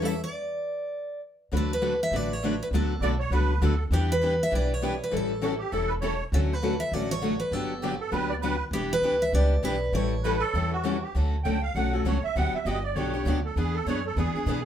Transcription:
Already playing: E2
0.02 E3 G3 C#4 E4 A4 E5
0.24 D5
1.52 D2 D3 F#3 A3 D4 F#4 B4
1.57 A4
1.73 B4
1.82 D3 F#3 A3 D4 F#4 B4
2.03 E5
2.11 A1 D3 F#3 A3 D4 F#4 B4
2.16 D5
2.33 C#5
2.44 D3 F#3 A3 D4 F#4 B4
2.63 B4
2.71 D2 D3 F#3 A3 B3 D4 F#4 A4 B4
2.75 A4
3.00 B1 D3 F#3 A3 B3 D4 F#4 A4 B4 D5
3.20 C#5
3.31 C#2 D3 F#3 A3 B3 D4 F#4 A4 B4
3.61 D2 D3 F#3 A3 B3 D4 F#4 A4 B4
3.91 E2 E3 G3 B3 D4 E4 G4 B4
4.12 B4
4.21 E3 G3 B3 D4 E4 G4 B4
4.43 E5
4.51 B1 E3 G3 B3 D4 E4 G4 B4
4.55 D5
4.74 C#5
4.82 E3 G3 B3 D4 E4 G4 B4
5.04 B4
5.11 A1 E3 G3 C#4 E4 A4
5.17 A4
5.41 E3 G3 C#4 E4 F#4 A4
5.59 G4
5.71 E1 E3 G3 C#4 E4 A4
5.88 B4
6.01 E3 G3 C#4 E4 A4 C#5
6.32 D2 D3 F#3 A3 C#4 F#4 A4
6.53 B4
6.63 D3 F#3 A3 C#4 F#4 A4
6.80 E5
6.92 A1 D3 F#3 A3 C#4 F#4 A4 D5
7.11 C#5
7.21 D3 F#3 A3 C#4 F#4 A4
7.40 B4
7.51 G1 D3 F#3 B3 D4 G4 A4
7.82 D3 F#3 B3 D4 G4
8.00 A4
8.12 D2 D3 F#3 B3 D4 G4 B4
8.30 D5
8.41 D3 F#3 B3 D4 G4 B4
8.71 E1 E3 G3 B3 D4 E4 G4
8.75 B4
8.93 B4
9.02 D2 E3 G3 B3 D4 E4 G4 B4
9.22 E5
9.32 C#2 E3 G3 B3 D4 E4 G4 B4 D5
9.63 B1 E3 G3 B3 D4 E4 G4 B4
9.92 A1 E3 G3 C#4 E4 A4 C#5
10.23 E3 G3 C#4 E4 A4 B4
10.39 A4
10.54 E2 E3 G3 C#4 E4 A4
10.73 F#4
10.83 E3 G3 C#4 E4 A4
11.03 G4
11.15 D2 D3 F#3 A3 C#4 F#4 A4
11.43 C#2 D3 F#3 A3 C#4 F#4 A4 G5
11.62 F5
11.75 B1 D3 F#3 A3 C#4 F#4 A4 F#5
11.93 A3 C#4 F#4 A4
12.05 C#2 D3 F#3 A3 C#4 F#4 A4 C#5
12.23 E5, muted upright bass stroke
12.36 D2 D3 F#3 B3 D4 G4 F#5
12.53 E5, muted upright bass stroke
12.65 G1 D3 F#3 B3 D4 G4 D#5
12.84 D5
12.94 B1 D3 F#3 B3 D4 G4 C#5
13.14 B3 D4 G4
13.25 D2 D3 F#3 B3 D4 G4
13.45 A4
13.56 E2 E3 B3 D4 G#4 B4
13.74 A4
13.86 F#2 E3 B3 D4 G#4 B4 C#5
14.06 A4
14.16 E2 E3 B3 D4 G#4 B4
14.34 B3 D4 G#4, muted upright bass stroke
14.46 B2 E3 B3 D4 G#4 B4

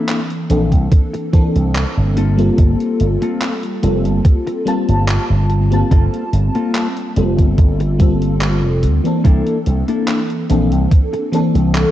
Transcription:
Already playing: E3 A#3 C4 D4 E4 A4
0.09 clap, closed hi-hat
0.30 closed hi-hat
0.49 A#1 E3 A#3 C4 D4 A4, muted clean electric guitar stroke, closed hi-hat
0.72 C2, kick, closed hi-hat
0.92 muted clean electric guitar stroke, kick, closed hi-hat
1.13 muted clean electric guitar stroke, closed hi-hat
1.32 E3 A#3 C4 D4 A4, muted clean electric guitar stroke, kick, closed hi-hat
1.55 C2, closed hi-hat
1.75 clap, closed hi-hat
1.97 G1
2.16 A#3 C4 F4 A4, closed hi-hat
2.37 G3 A#3 C4 F4 A4, closed hi-hat
2.58 G1, kick, closed hi-hat
2.80 closed hi-hat
3.00 G1, closed hi-hat
3.22 A#3 C4 F4 A4, closed hi-hat
3.41 clap, closed hi-hat
3.63 closed hi-hat
3.82 F1 G3 A#3 C4 F4 A4, muted clean electric guitar stroke, closed hi-hat
4.05 G1, closed hi-hat
4.25 muted clean electric guitar stroke, kick, closed hi-hat
4.47 muted clean electric guitar stroke, closed hi-hat
4.65 G3 A#3 C4 F4 A5, muted clean electric guitar stroke, closed hi-hat
4.89 G1, closed hi-hat
5.08 clap, closed hi-hat
5.30 G1
5.50 muted clean electric guitar stroke, closed hi-hat
5.70 G3 A#3 C4 F4 A5, closed hi-hat
5.91 G1 A#3 C4 F4 A4, kick, closed hi-hat
6.14 closed hi-hat
6.33 G1, closed hi-hat
6.55 A#3 C4 F4 A4, closed hi-hat
6.75 clap, closed hi-hat
6.97 closed hi-hat
7.16 F1 G3 A#3 C4 F4 A4, muted clean electric guitar stroke, closed hi-hat
7.38 G1, kick, closed hi-hat
7.58 G1, muted clean electric guitar stroke, kick, closed hi-hat
7.80 muted clean electric guitar stroke, closed hi-hat
7.99 G3 A#3 C4 F4 A4, muted clean electric guitar stroke, kick, closed hi-hat
8.22 closed hi-hat
8.41 clap, closed hi-hat
8.64 F1
8.83 D2, muted clean electric guitar stroke, closed hi-hat
9.04 E3 A#3 C4 D4 A4, closed hi-hat
9.24 C2 A#3 D4 E4 A4, kick, closed hi-hat
9.47 closed hi-hat
9.66 C2, closed hi-hat
9.88 A#3 D4 E4 A4, closed hi-hat
10.08 clap, closed hi-hat
10.30 closed hi-hat
10.49 A#1 E3 A#3 C4 D4 A4, muted clean electric guitar stroke, closed hi-hat
10.72 C2, closed hi-hat
10.91 muted clean electric guitar stroke, kick, closed hi-hat
11.13 muted clean electric guitar stroke, closed hi-hat
11.32 E3 A#3 C4 D4 A4, muted clean electric guitar stroke, closed hi-hat
11.55 C2, closed hi-hat
11.75 clap, closed hi-hat

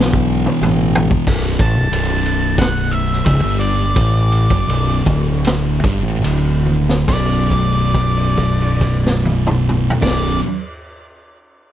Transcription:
Already playing: B1 E2 B2 E3
0.00 snare
0.13 kick
0.46 mid tom
0.61 A1, mid tom
0.95 floor tom
1.11 kick
1.27 B0 B1, kick, crash
1.59 A1 A2 A5, kick, ride
1.75 B0 B1
1.92 B0 B1, ride
2.26 ride
2.58 F#5, kick, snare, ride
2.92 E5, ride
3.12 snare
3.26 C#1 C#2 E5, kick, ride
3.43 G1 G2
3.60 D5, ride
3.96 A1 A2, kick, ride
4.32 ride
4.50 F#1 F#2, kick
4.69 B0 B1, ride
5.06 D1 D2, kick, ride
5.44 snare, ride
5.84 G1 G2, kick, ride
6.03 A1 A2
6.23 D1 D2, ride
6.66 high tom
6.89 snare
7.06 B0 B1 F#2 D5, kick, crash
7.10 B2
7.51 kick, crash
7.73 crash
7.95 kick, crash
8.17 crash
8.38 kick, crash
8.60 crash
8.81 kick, crash
9.06 snare
9.25 high tom
9.47 mid tom
9.69 mid tom
9.90 floor tom
10.01 B0 B1 F#2 B2 D5, kick, crash
10.05 snare

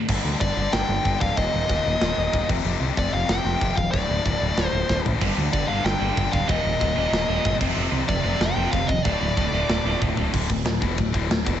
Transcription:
0.00 D2
0.08 G1 G2 D3, kick, crash, china
0.16 G2 D3
0.24 D2 G2 D3
0.30 G2 D3
0.38 G1 G2 D3 D5, kick, china
0.46 G2 D3
0.53 G1 G2 D3
0.61 G2 D3
0.69 G1 G2 D3 G5, snare, china
0.76 G2 D3
0.84 G2 D3
0.88 G1 G2
0.93 D3
1.00 G2 D3
1.05 G1 G2 D3, kick, china
1.14 G2 D3
1.21 D1 G2 D3 F5, kick
1.30 G2 D3
1.37 D#1 D#2 A#2 D#5, kick, china
1.45 D#2 A#2
1.51 D#1 D#2 A#2
1.59 D#2 A#2
1.67 D#1 D#2 A#2, kick, china
1.74 D#2 A#2
1.81 D#2 A#2
1.86 D#1 D#2
1.90 A#2
1.96 D#2 A#2
2.01 D#1 D#2 A#2, snare, china
2.11 D#2 A#2
2.17 D#1 D#2 A#2
2.27 D#2 A#2
2.33 D#1 D#2 A#2, kick, china
2.41 D#2 A#2
2.48 F1 F2 C3, kick, crash
2.55 F2 C3
2.63 F1 F2 C3, china
2.71 F2 C3
2.79 C2 F2 C3
2.86 F2 C3
2.94 F1 F2 C3, kick, china
2.98 F2 C3 D5
3.08 F2 C3
3.13 F1 C3 F5
3.17 F2
3.24 F2 C3
3.29 F1 F2 C3 G5, snare, china
3.39 F2 C3
3.45 F1 F2 C3
3.54 F2 C3
3.61 F1 F2 C3, kick, china
3.69 F2 C3
3.76 D#1 F5, kick
3.91 D1 D2 A2 D5, kick, china
4.01 D2 A2
4.08 D1 D2 A2
4.16 D2 A2
4.22 D1 D2 A2, kick, china
4.30 D2 A2
4.38 D1 D2 A2
4.45 D2 A2
4.53 D2 A2
4.57 D1 A2, snare, china
4.62 D2
4.66 D2 A2 C5
4.73 D1 D2 A2
4.83 D2 A2
4.89 D1 D2 A2, kick, snare
4.99 D2 A2
5.05 A1 D2 A2, floor tom
5.14 D2 A2
5.20 G1 G2 D3 G3, kick, china, crash
5.28 G2 D3
5.35 D2 G2 D3
5.43 G2 D3
5.51 G1 G2 D3 D5, kick, china
5.57 G2 D3
5.66 G1 G2 D3 G3 F5
5.73 G2 D3
5.79 G2 D3
5.84 G1 G2 G5, snare, china
5.88 G2 D3
5.96 G2 D3
6.01 G1 G2 D3 G3
6.11 G2 D3
6.17 G1 G2 D3, kick, china
6.26 G2 D3
6.33 D1 G2 D3 F5, kick
6.41 G2 D3
6.48 D#1 D#2 A#2 D#3 D#5, kick, china
6.56 D#2 A#2
6.63 D#1 D#2 A#2
6.71 D#2 A#2
6.78 D#1 D#2 A#2, kick, china
6.86 D#2 A#2
6.93 D#1 D#2 A#2
6.97 A#2 D#3
7.01 D#2
7.08 D#1 D#2 A#2
7.13 D#2 A#2, snare, china
7.23 D#2 A#2
7.28 D#1 D#2 A#2 D#3
7.38 D#2 A#2
7.45 G1 D#2 A#2, kick, china
7.52 D#2 A#2
7.60 F1 F2 C3 F3, kick, crash
7.68 F2 C3
7.75 F1 F2 C3 F3, china
7.83 F2 C3
7.91 C2 F2 C3
7.98 F2 C3
8.06 F1 F2 C3 D5, kick, china
8.14 F2 C3
8.20 F1 F2 C3
8.25 F3
8.29 F2 C3
8.36 F2 C3
8.40 F1 F2 C3 G5, snare, china
8.50 F2 C3
8.56 F1 F2 C3 F3
8.66 F2 C3
8.71 F1 F2 C3 F5, kick, china
8.81 F2 C3
8.87 D#1 F2 C3 D#5, kick
9.03 D1 D2 A2 D3 D5, kick, china
9.12 D2 A2
9.21 D1 D2 A2
9.28 D2 A2
9.37 D1 D2 A2, kick, china
9.44 D2 A2
9.52 D1 D2 A2 D3
9.60 D2 A2
9.68 D1 D2 A2, snare, china
9.76 D2 A2
9.84 D1 D2 A2 D3
9.92 D2 A2
9.99 D1 D2 A2, kick, high tom
10.07 D2 A2
10.14 D1 D2 A2, floor tom
10.23 D2 A2
10.32 D1 D2 A2 D3, kick, crash
10.48 D1 D2 A2, kick, ride
10.65 D1 D2 A2, snare, ride
10.80 E1 E2 B2 E3, kick, ride
10.97 D1 D2 A2, kick, ride
11.12 D1 D2 A2 D3, kick, ride
11.28 D1 D2 A2, snare, ride
11.45 E1 E2 B2 E3, kick, ride

